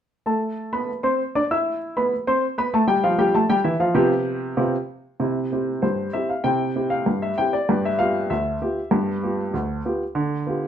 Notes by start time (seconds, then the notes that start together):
0.26 A3 A4 A5
0.73 B3 B4 B5
1.03 C4 C5 C6
1.35 D4 D5 D6
1.51 E4 E5 E6
1.97 B3 B4 B5
2.27 C4 C5 C6
2.58 B3 B4 B5
2.74 A3 A4 A5
2.87 G3 G4 G5
3.04 F3 F4 F5
3.18 G3 G4 G5
3.34 A3 A4 A5
3.50 G3 G4 G5
3.64 E3 E4 E5
3.80 F3 F4 F5
3.94 C3 B3 F4 G4
4.57 C3 B3 F4 G4
5.20 C3 E4
5.52 C4 E4 G4
5.82 G2 C5
6.13 C4 E4 G4 E5
6.29 F5
6.44 C3 E4 G5
6.75 C4 E4 G4
6.90 F5
7.06 G2
7.22 E5
7.38 C4 E4 G4 G5
7.53 D5
7.69 G2 B3
7.85 E5
7.99 B3 F4 G4 F5
8.30 D2 E5
8.61 B3 F4 G4
8.91 G2 B3
9.23 B3 F4 G4
9.54 D2
9.85 B3 F4 G4
10.15 D3
10.46 B3 F4 G4